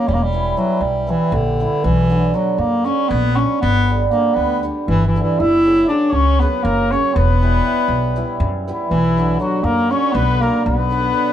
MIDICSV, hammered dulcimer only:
0, 0, Header, 1, 2, 480
1, 0, Start_track
1, 0, Key_signature, 2, "minor"
1, 0, Tempo, 505476
1, 80, Time_signature, 7, 3, 24, 8
1, 6079, Tempo, 498753
1, 10820, End_track
2, 0, Start_track
2, 0, Title_t, "Hammered dulcimer"
2, 0, Program_c, 0, 15
2, 0, Note_on_c, 0, 49, 62
2, 0, Note_on_c, 0, 54, 52
2, 127, Note_off_c, 0, 49, 0
2, 127, Note_off_c, 0, 54, 0
2, 309, Note_on_c, 0, 52, 61
2, 316, Note_on_c, 0, 55, 52
2, 324, Note_on_c, 0, 59, 57
2, 325, Note_on_c, 0, 64, 77
2, 511, Note_off_c, 0, 59, 0
2, 512, Note_off_c, 0, 64, 0
2, 525, Note_off_c, 0, 52, 0
2, 530, Note_off_c, 0, 55, 0
2, 537, Note_on_c, 0, 52, 59
2, 541, Note_on_c, 0, 55, 54
2, 546, Note_on_c, 0, 59, 57
2, 554, Note_on_c, 0, 64, 70
2, 734, Note_off_c, 0, 59, 0
2, 738, Note_off_c, 0, 64, 0
2, 1003, Note_off_c, 0, 52, 0
2, 1009, Note_off_c, 0, 55, 0
2, 1015, Note_on_c, 0, 52, 57
2, 1021, Note_on_c, 0, 55, 58
2, 1026, Note_on_c, 0, 59, 60
2, 1032, Note_on_c, 0, 64, 72
2, 1223, Note_off_c, 0, 59, 0
2, 1226, Note_off_c, 0, 64, 0
2, 1501, Note_off_c, 0, 52, 0
2, 1508, Note_off_c, 0, 55, 0
2, 1513, Note_on_c, 0, 52, 55
2, 1519, Note_on_c, 0, 55, 57
2, 1523, Note_on_c, 0, 59, 61
2, 1530, Note_on_c, 0, 64, 67
2, 1719, Note_off_c, 0, 59, 0
2, 1722, Note_off_c, 0, 64, 0
2, 1813, Note_off_c, 0, 52, 0
2, 1813, Note_off_c, 0, 55, 0
2, 1988, Note_on_c, 0, 50, 66
2, 1994, Note_on_c, 0, 54, 64
2, 1999, Note_on_c, 0, 59, 68
2, 2008, Note_on_c, 0, 62, 75
2, 2191, Note_off_c, 0, 59, 0
2, 2195, Note_off_c, 0, 62, 0
2, 2207, Note_off_c, 0, 50, 0
2, 2210, Note_off_c, 0, 54, 0
2, 2218, Note_on_c, 0, 50, 65
2, 2222, Note_on_c, 0, 54, 53
2, 2230, Note_on_c, 0, 59, 57
2, 2235, Note_on_c, 0, 62, 68
2, 2418, Note_off_c, 0, 59, 0
2, 2421, Note_off_c, 0, 62, 0
2, 2693, Note_off_c, 0, 50, 0
2, 2698, Note_off_c, 0, 54, 0
2, 2704, Note_on_c, 0, 50, 63
2, 2709, Note_on_c, 0, 54, 55
2, 2714, Note_on_c, 0, 59, 58
2, 2722, Note_on_c, 0, 62, 68
2, 2909, Note_off_c, 0, 59, 0
2, 2913, Note_off_c, 0, 62, 0
2, 3191, Note_off_c, 0, 50, 0
2, 3194, Note_off_c, 0, 54, 0
2, 3202, Note_on_c, 0, 50, 61
2, 3206, Note_on_c, 0, 54, 54
2, 3213, Note_on_c, 0, 59, 61
2, 3216, Note_on_c, 0, 62, 67
2, 3405, Note_off_c, 0, 59, 0
2, 3406, Note_off_c, 0, 62, 0
2, 3495, Note_off_c, 0, 50, 0
2, 3495, Note_off_c, 0, 54, 0
2, 3683, Note_on_c, 0, 50, 57
2, 3688, Note_on_c, 0, 55, 55
2, 3695, Note_on_c, 0, 59, 54
2, 3701, Note_on_c, 0, 62, 76
2, 3879, Note_off_c, 0, 59, 0
2, 3882, Note_off_c, 0, 62, 0
2, 3894, Note_off_c, 0, 50, 0
2, 3902, Note_off_c, 0, 55, 0
2, 3905, Note_on_c, 0, 50, 60
2, 3914, Note_on_c, 0, 55, 56
2, 3914, Note_on_c, 0, 59, 48
2, 3922, Note_on_c, 0, 62, 62
2, 4100, Note_off_c, 0, 59, 0
2, 4104, Note_off_c, 0, 62, 0
2, 4382, Note_off_c, 0, 50, 0
2, 4388, Note_off_c, 0, 55, 0
2, 4394, Note_on_c, 0, 50, 62
2, 4399, Note_on_c, 0, 55, 62
2, 4405, Note_on_c, 0, 59, 66
2, 4413, Note_on_c, 0, 62, 67
2, 4593, Note_off_c, 0, 59, 0
2, 4597, Note_off_c, 0, 62, 0
2, 4880, Note_off_c, 0, 50, 0
2, 4888, Note_off_c, 0, 55, 0
2, 4892, Note_on_c, 0, 50, 55
2, 4900, Note_on_c, 0, 55, 57
2, 4904, Note_on_c, 0, 59, 54
2, 4911, Note_on_c, 0, 62, 75
2, 5088, Note_off_c, 0, 59, 0
2, 5092, Note_off_c, 0, 62, 0
2, 5172, Note_off_c, 0, 50, 0
2, 5172, Note_off_c, 0, 55, 0
2, 5366, Note_on_c, 0, 49, 64
2, 5372, Note_on_c, 0, 54, 56
2, 5381, Note_on_c, 0, 58, 63
2, 5385, Note_on_c, 0, 61, 64
2, 5560, Note_off_c, 0, 58, 0
2, 5561, Note_off_c, 0, 61, 0
2, 5579, Note_off_c, 0, 49, 0
2, 5583, Note_off_c, 0, 54, 0
2, 5590, Note_on_c, 0, 49, 61
2, 5594, Note_on_c, 0, 54, 51
2, 5599, Note_on_c, 0, 58, 57
2, 5604, Note_on_c, 0, 61, 65
2, 5780, Note_off_c, 0, 58, 0
2, 5782, Note_off_c, 0, 61, 0
2, 6069, Note_off_c, 0, 49, 0
2, 6076, Note_off_c, 0, 54, 0
2, 6080, Note_on_c, 0, 49, 64
2, 6087, Note_on_c, 0, 54, 60
2, 6095, Note_on_c, 0, 58, 62
2, 6099, Note_on_c, 0, 61, 71
2, 6277, Note_off_c, 0, 58, 0
2, 6279, Note_off_c, 0, 61, 0
2, 6568, Note_off_c, 0, 49, 0
2, 6577, Note_off_c, 0, 54, 0
2, 6580, Note_on_c, 0, 49, 64
2, 6588, Note_on_c, 0, 54, 57
2, 6593, Note_on_c, 0, 58, 61
2, 6597, Note_on_c, 0, 61, 61
2, 6774, Note_off_c, 0, 58, 0
2, 6776, Note_off_c, 0, 61, 0
2, 6853, Note_off_c, 0, 49, 0
2, 6853, Note_off_c, 0, 54, 0
2, 7056, Note_on_c, 0, 52, 57
2, 7058, Note_on_c, 0, 55, 64
2, 7068, Note_on_c, 0, 59, 61
2, 7070, Note_on_c, 0, 64, 66
2, 7246, Note_off_c, 0, 59, 0
2, 7247, Note_off_c, 0, 64, 0
2, 7266, Note_off_c, 0, 52, 0
2, 7268, Note_off_c, 0, 55, 0
2, 7277, Note_on_c, 0, 52, 52
2, 7280, Note_on_c, 0, 55, 57
2, 7287, Note_on_c, 0, 59, 53
2, 7298, Note_on_c, 0, 64, 71
2, 7467, Note_off_c, 0, 59, 0
2, 7473, Note_off_c, 0, 64, 0
2, 7758, Note_off_c, 0, 52, 0
2, 7762, Note_off_c, 0, 55, 0
2, 7769, Note_on_c, 0, 52, 73
2, 7773, Note_on_c, 0, 55, 69
2, 7776, Note_on_c, 0, 59, 70
2, 7784, Note_on_c, 0, 64, 78
2, 7961, Note_off_c, 0, 59, 0
2, 7965, Note_off_c, 0, 64, 0
2, 8256, Note_off_c, 0, 52, 0
2, 8262, Note_off_c, 0, 55, 0
2, 8267, Note_on_c, 0, 52, 67
2, 8274, Note_on_c, 0, 55, 77
2, 8279, Note_on_c, 0, 59, 72
2, 8284, Note_on_c, 0, 64, 78
2, 8459, Note_off_c, 0, 59, 0
2, 8461, Note_off_c, 0, 64, 0
2, 8538, Note_off_c, 0, 52, 0
2, 8538, Note_off_c, 0, 55, 0
2, 8746, Note_on_c, 0, 50, 68
2, 8751, Note_on_c, 0, 54, 61
2, 8756, Note_on_c, 0, 59, 64
2, 8766, Note_on_c, 0, 62, 84
2, 8931, Note_off_c, 0, 59, 0
2, 8936, Note_off_c, 0, 62, 0
2, 8950, Note_off_c, 0, 50, 0
2, 8957, Note_off_c, 0, 54, 0
2, 8961, Note_on_c, 0, 50, 62
2, 8968, Note_on_c, 0, 54, 57
2, 8977, Note_on_c, 0, 59, 58
2, 8981, Note_on_c, 0, 62, 61
2, 9152, Note_off_c, 0, 59, 0
2, 9154, Note_off_c, 0, 62, 0
2, 9441, Note_off_c, 0, 50, 0
2, 9444, Note_off_c, 0, 54, 0
2, 9452, Note_on_c, 0, 50, 66
2, 9456, Note_on_c, 0, 54, 54
2, 9461, Note_on_c, 0, 59, 55
2, 9467, Note_on_c, 0, 62, 76
2, 9642, Note_off_c, 0, 59, 0
2, 9645, Note_off_c, 0, 62, 0
2, 9932, Note_off_c, 0, 50, 0
2, 9935, Note_off_c, 0, 54, 0
2, 9943, Note_on_c, 0, 50, 56
2, 9947, Note_on_c, 0, 54, 54
2, 9951, Note_on_c, 0, 59, 57
2, 9954, Note_on_c, 0, 62, 68
2, 10132, Note_off_c, 0, 59, 0
2, 10133, Note_off_c, 0, 62, 0
2, 10213, Note_off_c, 0, 50, 0
2, 10213, Note_off_c, 0, 54, 0
2, 10416, Note_on_c, 0, 50, 64
2, 10420, Note_on_c, 0, 54, 55
2, 10427, Note_on_c, 0, 59, 66
2, 10435, Note_on_c, 0, 62, 72
2, 10602, Note_off_c, 0, 59, 0
2, 10606, Note_off_c, 0, 62, 0
2, 10616, Note_off_c, 0, 50, 0
2, 10618, Note_off_c, 0, 54, 0
2, 10627, Note_on_c, 0, 50, 60
2, 10630, Note_on_c, 0, 54, 55
2, 10638, Note_on_c, 0, 59, 55
2, 10644, Note_on_c, 0, 62, 67
2, 10817, Note_off_c, 0, 59, 0
2, 10820, Note_off_c, 0, 50, 0
2, 10820, Note_off_c, 0, 54, 0
2, 10820, Note_off_c, 0, 62, 0
2, 10820, End_track
0, 0, End_of_file